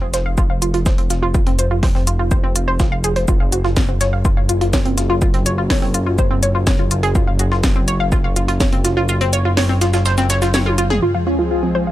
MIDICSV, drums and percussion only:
0, 0, Header, 1, 2, 480
1, 0, Start_track
1, 0, Tempo, 483871
1, 1336, Time_signature, 4, 2, 24, 8
1, 11822, End_track
2, 0, Start_track
2, 0, Title_t, "Drums"
2, 134, Note_on_c, 9, 38, 57
2, 134, Note_on_c, 9, 82, 67
2, 135, Note_on_c, 9, 42, 90
2, 234, Note_off_c, 9, 38, 0
2, 234, Note_off_c, 9, 42, 0
2, 234, Note_off_c, 9, 82, 0
2, 374, Note_on_c, 9, 36, 120
2, 374, Note_on_c, 9, 82, 82
2, 474, Note_off_c, 9, 36, 0
2, 474, Note_off_c, 9, 82, 0
2, 615, Note_on_c, 9, 82, 66
2, 616, Note_on_c, 9, 42, 101
2, 714, Note_off_c, 9, 82, 0
2, 715, Note_off_c, 9, 42, 0
2, 734, Note_on_c, 9, 42, 44
2, 834, Note_off_c, 9, 42, 0
2, 854, Note_on_c, 9, 38, 109
2, 854, Note_on_c, 9, 82, 85
2, 855, Note_on_c, 9, 36, 120
2, 953, Note_off_c, 9, 38, 0
2, 953, Note_off_c, 9, 82, 0
2, 954, Note_off_c, 9, 36, 0
2, 974, Note_on_c, 9, 42, 42
2, 1073, Note_off_c, 9, 42, 0
2, 1093, Note_on_c, 9, 38, 44
2, 1093, Note_on_c, 9, 82, 65
2, 1095, Note_on_c, 9, 42, 90
2, 1193, Note_off_c, 9, 38, 0
2, 1193, Note_off_c, 9, 82, 0
2, 1194, Note_off_c, 9, 42, 0
2, 1334, Note_on_c, 9, 82, 81
2, 1335, Note_on_c, 9, 36, 121
2, 1433, Note_off_c, 9, 82, 0
2, 1434, Note_off_c, 9, 36, 0
2, 1454, Note_on_c, 9, 42, 45
2, 1553, Note_off_c, 9, 42, 0
2, 1574, Note_on_c, 9, 42, 106
2, 1574, Note_on_c, 9, 82, 63
2, 1673, Note_off_c, 9, 42, 0
2, 1673, Note_off_c, 9, 82, 0
2, 1814, Note_on_c, 9, 38, 113
2, 1814, Note_on_c, 9, 46, 74
2, 1815, Note_on_c, 9, 36, 113
2, 1913, Note_off_c, 9, 38, 0
2, 1913, Note_off_c, 9, 46, 0
2, 1914, Note_off_c, 9, 36, 0
2, 1935, Note_on_c, 9, 38, 40
2, 2034, Note_off_c, 9, 38, 0
2, 2054, Note_on_c, 9, 82, 69
2, 2055, Note_on_c, 9, 42, 94
2, 2154, Note_off_c, 9, 42, 0
2, 2154, Note_off_c, 9, 82, 0
2, 2295, Note_on_c, 9, 36, 112
2, 2295, Note_on_c, 9, 82, 83
2, 2394, Note_off_c, 9, 36, 0
2, 2394, Note_off_c, 9, 82, 0
2, 2535, Note_on_c, 9, 42, 108
2, 2535, Note_on_c, 9, 82, 68
2, 2634, Note_off_c, 9, 82, 0
2, 2635, Note_off_c, 9, 42, 0
2, 2775, Note_on_c, 9, 36, 112
2, 2775, Note_on_c, 9, 38, 108
2, 2775, Note_on_c, 9, 82, 83
2, 2874, Note_off_c, 9, 38, 0
2, 2874, Note_off_c, 9, 82, 0
2, 2875, Note_off_c, 9, 36, 0
2, 3015, Note_on_c, 9, 82, 65
2, 3016, Note_on_c, 9, 42, 88
2, 3114, Note_off_c, 9, 82, 0
2, 3115, Note_off_c, 9, 42, 0
2, 3136, Note_on_c, 9, 42, 42
2, 3235, Note_off_c, 9, 42, 0
2, 3255, Note_on_c, 9, 82, 87
2, 3256, Note_on_c, 9, 36, 124
2, 3354, Note_off_c, 9, 82, 0
2, 3355, Note_off_c, 9, 36, 0
2, 3496, Note_on_c, 9, 42, 106
2, 3496, Note_on_c, 9, 82, 67
2, 3595, Note_off_c, 9, 42, 0
2, 3595, Note_off_c, 9, 82, 0
2, 3616, Note_on_c, 9, 38, 45
2, 3715, Note_off_c, 9, 38, 0
2, 3735, Note_on_c, 9, 38, 109
2, 3736, Note_off_c, 9, 38, 0
2, 3736, Note_on_c, 9, 36, 107
2, 3736, Note_on_c, 9, 38, 111
2, 3736, Note_on_c, 9, 82, 81
2, 3835, Note_off_c, 9, 36, 0
2, 3835, Note_off_c, 9, 38, 0
2, 3835, Note_off_c, 9, 82, 0
2, 3976, Note_on_c, 9, 38, 57
2, 3976, Note_on_c, 9, 42, 94
2, 3976, Note_on_c, 9, 82, 63
2, 4075, Note_off_c, 9, 42, 0
2, 4076, Note_off_c, 9, 38, 0
2, 4076, Note_off_c, 9, 82, 0
2, 4216, Note_on_c, 9, 36, 117
2, 4216, Note_on_c, 9, 82, 81
2, 4315, Note_off_c, 9, 36, 0
2, 4315, Note_off_c, 9, 82, 0
2, 4455, Note_on_c, 9, 42, 108
2, 4456, Note_on_c, 9, 82, 64
2, 4554, Note_off_c, 9, 42, 0
2, 4555, Note_off_c, 9, 82, 0
2, 4576, Note_on_c, 9, 42, 43
2, 4675, Note_off_c, 9, 42, 0
2, 4695, Note_on_c, 9, 38, 105
2, 4696, Note_off_c, 9, 38, 0
2, 4696, Note_on_c, 9, 36, 116
2, 4696, Note_on_c, 9, 38, 112
2, 4696, Note_on_c, 9, 82, 84
2, 4795, Note_off_c, 9, 36, 0
2, 4796, Note_off_c, 9, 38, 0
2, 4796, Note_off_c, 9, 82, 0
2, 4816, Note_on_c, 9, 42, 43
2, 4916, Note_off_c, 9, 42, 0
2, 4936, Note_on_c, 9, 38, 43
2, 4936, Note_on_c, 9, 42, 90
2, 4936, Note_on_c, 9, 82, 64
2, 5035, Note_off_c, 9, 38, 0
2, 5035, Note_off_c, 9, 42, 0
2, 5035, Note_off_c, 9, 82, 0
2, 5175, Note_on_c, 9, 82, 88
2, 5176, Note_on_c, 9, 36, 114
2, 5274, Note_off_c, 9, 82, 0
2, 5275, Note_off_c, 9, 36, 0
2, 5296, Note_on_c, 9, 42, 43
2, 5395, Note_off_c, 9, 42, 0
2, 5416, Note_on_c, 9, 42, 100
2, 5416, Note_on_c, 9, 82, 66
2, 5515, Note_off_c, 9, 42, 0
2, 5515, Note_off_c, 9, 82, 0
2, 5655, Note_on_c, 9, 38, 113
2, 5655, Note_on_c, 9, 46, 75
2, 5656, Note_off_c, 9, 38, 0
2, 5656, Note_on_c, 9, 36, 102
2, 5656, Note_on_c, 9, 38, 112
2, 5755, Note_off_c, 9, 36, 0
2, 5755, Note_off_c, 9, 38, 0
2, 5755, Note_off_c, 9, 46, 0
2, 5776, Note_on_c, 9, 38, 43
2, 5875, Note_off_c, 9, 38, 0
2, 5895, Note_on_c, 9, 42, 85
2, 5896, Note_on_c, 9, 82, 65
2, 5994, Note_off_c, 9, 42, 0
2, 5995, Note_off_c, 9, 82, 0
2, 6135, Note_on_c, 9, 36, 107
2, 6135, Note_on_c, 9, 82, 84
2, 6234, Note_off_c, 9, 82, 0
2, 6235, Note_off_c, 9, 36, 0
2, 6374, Note_on_c, 9, 42, 98
2, 6376, Note_on_c, 9, 82, 64
2, 6474, Note_off_c, 9, 42, 0
2, 6475, Note_off_c, 9, 82, 0
2, 6614, Note_on_c, 9, 38, 106
2, 6615, Note_on_c, 9, 36, 113
2, 6616, Note_off_c, 9, 38, 0
2, 6616, Note_on_c, 9, 38, 114
2, 6616, Note_on_c, 9, 82, 85
2, 6715, Note_off_c, 9, 36, 0
2, 6715, Note_off_c, 9, 38, 0
2, 6715, Note_off_c, 9, 82, 0
2, 6854, Note_on_c, 9, 42, 81
2, 6855, Note_on_c, 9, 82, 68
2, 6954, Note_off_c, 9, 42, 0
2, 6955, Note_off_c, 9, 82, 0
2, 6976, Note_on_c, 9, 42, 43
2, 7075, Note_off_c, 9, 42, 0
2, 7096, Note_on_c, 9, 36, 119
2, 7096, Note_on_c, 9, 82, 81
2, 7195, Note_off_c, 9, 36, 0
2, 7195, Note_off_c, 9, 82, 0
2, 7333, Note_on_c, 9, 42, 99
2, 7335, Note_on_c, 9, 82, 67
2, 7433, Note_off_c, 9, 42, 0
2, 7435, Note_off_c, 9, 82, 0
2, 7456, Note_on_c, 9, 38, 43
2, 7556, Note_off_c, 9, 38, 0
2, 7574, Note_on_c, 9, 38, 115
2, 7575, Note_off_c, 9, 38, 0
2, 7575, Note_on_c, 9, 36, 105
2, 7575, Note_on_c, 9, 38, 113
2, 7575, Note_on_c, 9, 82, 85
2, 7674, Note_off_c, 9, 38, 0
2, 7674, Note_off_c, 9, 82, 0
2, 7675, Note_off_c, 9, 36, 0
2, 7815, Note_on_c, 9, 42, 84
2, 7817, Note_on_c, 9, 82, 69
2, 7914, Note_off_c, 9, 42, 0
2, 7916, Note_off_c, 9, 82, 0
2, 8055, Note_on_c, 9, 36, 107
2, 8056, Note_on_c, 9, 82, 82
2, 8155, Note_off_c, 9, 36, 0
2, 8155, Note_off_c, 9, 82, 0
2, 8296, Note_on_c, 9, 42, 103
2, 8296, Note_on_c, 9, 82, 69
2, 8395, Note_off_c, 9, 42, 0
2, 8395, Note_off_c, 9, 82, 0
2, 8416, Note_on_c, 9, 42, 45
2, 8516, Note_off_c, 9, 42, 0
2, 8535, Note_on_c, 9, 36, 111
2, 8535, Note_on_c, 9, 38, 114
2, 8535, Note_on_c, 9, 82, 83
2, 8536, Note_off_c, 9, 38, 0
2, 8536, Note_on_c, 9, 38, 110
2, 8634, Note_off_c, 9, 36, 0
2, 8634, Note_off_c, 9, 82, 0
2, 8635, Note_off_c, 9, 38, 0
2, 8655, Note_on_c, 9, 42, 46
2, 8755, Note_off_c, 9, 42, 0
2, 8775, Note_on_c, 9, 38, 43
2, 8775, Note_on_c, 9, 42, 85
2, 8775, Note_on_c, 9, 82, 65
2, 8874, Note_off_c, 9, 38, 0
2, 8874, Note_off_c, 9, 42, 0
2, 8874, Note_off_c, 9, 82, 0
2, 9015, Note_on_c, 9, 82, 84
2, 9114, Note_off_c, 9, 82, 0
2, 9136, Note_on_c, 9, 42, 44
2, 9235, Note_off_c, 9, 42, 0
2, 9255, Note_on_c, 9, 42, 103
2, 9255, Note_on_c, 9, 82, 69
2, 9354, Note_off_c, 9, 82, 0
2, 9355, Note_off_c, 9, 42, 0
2, 9495, Note_on_c, 9, 38, 122
2, 9495, Note_on_c, 9, 46, 81
2, 9594, Note_off_c, 9, 46, 0
2, 9595, Note_off_c, 9, 38, 0
2, 9616, Note_on_c, 9, 38, 44
2, 9715, Note_off_c, 9, 38, 0
2, 9735, Note_on_c, 9, 38, 101
2, 9735, Note_on_c, 9, 42, 83
2, 9735, Note_on_c, 9, 82, 73
2, 9834, Note_off_c, 9, 38, 0
2, 9834, Note_off_c, 9, 82, 0
2, 9835, Note_off_c, 9, 42, 0
2, 9856, Note_on_c, 9, 38, 100
2, 9856, Note_on_c, 9, 82, 74
2, 9955, Note_off_c, 9, 38, 0
2, 9955, Note_off_c, 9, 82, 0
2, 9976, Note_on_c, 9, 38, 97
2, 9976, Note_on_c, 9, 82, 77
2, 10075, Note_off_c, 9, 38, 0
2, 10075, Note_off_c, 9, 82, 0
2, 10096, Note_on_c, 9, 38, 95
2, 10096, Note_on_c, 9, 82, 76
2, 10195, Note_off_c, 9, 38, 0
2, 10195, Note_off_c, 9, 82, 0
2, 10215, Note_on_c, 9, 42, 101
2, 10216, Note_on_c, 9, 38, 104
2, 10216, Note_on_c, 9, 82, 77
2, 10315, Note_off_c, 9, 38, 0
2, 10315, Note_off_c, 9, 42, 0
2, 10315, Note_off_c, 9, 82, 0
2, 10336, Note_on_c, 9, 38, 102
2, 10336, Note_on_c, 9, 82, 80
2, 10436, Note_off_c, 9, 38, 0
2, 10436, Note_off_c, 9, 82, 0
2, 10455, Note_on_c, 9, 38, 117
2, 10455, Note_on_c, 9, 48, 61
2, 10456, Note_on_c, 9, 82, 77
2, 10554, Note_off_c, 9, 38, 0
2, 10554, Note_off_c, 9, 48, 0
2, 10555, Note_off_c, 9, 82, 0
2, 10575, Note_on_c, 9, 48, 66
2, 10675, Note_off_c, 9, 48, 0
2, 10695, Note_on_c, 9, 42, 85
2, 10696, Note_on_c, 9, 82, 59
2, 10794, Note_off_c, 9, 42, 0
2, 10795, Note_off_c, 9, 82, 0
2, 10816, Note_on_c, 9, 38, 41
2, 10816, Note_on_c, 9, 45, 87
2, 10915, Note_off_c, 9, 38, 0
2, 10915, Note_off_c, 9, 45, 0
2, 11822, End_track
0, 0, End_of_file